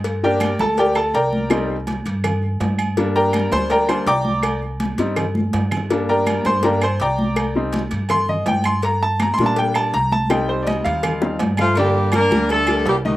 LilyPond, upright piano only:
<<
  \new Staff \with { instrumentName = "Upright piano" } { \time 4/4 \key g \minor \tempo 4 = 164 r8 <g' bes' d'' g''>4 <a' a''>8 <g' bes' d'' g''>8 <a' a''>8 <bes' d'' g'' bes''>4~ | <bes' d'' g'' bes''>8 r2. r8 | r8 <bes' d'' g'' bes''>4 <c'' c'''>8 <bes' d'' g'' bes''>8 <c'' c'''>8 <d'' g'' bes'' d'''>4~ | <d'' g'' bes'' d'''>8 r2. r8 |
r8 <bes' d'' g'' bes''>4 <c'' c'''>8 <bes' d'' g'' bes''>8 <c'' c'''>8 <d'' g'' bes'' d'''>4~ | <d'' g'' bes'' d'''>8 r4. c'''8 ees''8 g''8 c'''8 | bes''8 a''8 \tuplet 3/2 { bes''8 c'''8 a''8 } g''8 a''8 bes''8 a''8 | g''8 c''8 <d'' ees''>8 f''4. r4 |
<d d' d''>4 <g g' bes'>8 <g g' bes'>4 <g g' bes'>4 <ees ees' ees''>8 | }
  \new Staff \with { instrumentName = "Upright piano" } { \time 4/4 \key g \minor r8 <g bes d'>8 r2. | <g c' ees'>8 r2. r8 | <g bes d'>2~ <g bes d'>8 <g bes d'>8 r4 | r4. <g c' ees'>8 r2 |
<g bes d'>2 <g bes d'>8 r4. | r8 <g c' ees'>8 r2. | r4. <g bes d'>4. r4 | <g c' ees'>2~ <g c' ees'>8 <g c' ees'>8 r4 |
r1 | }
>>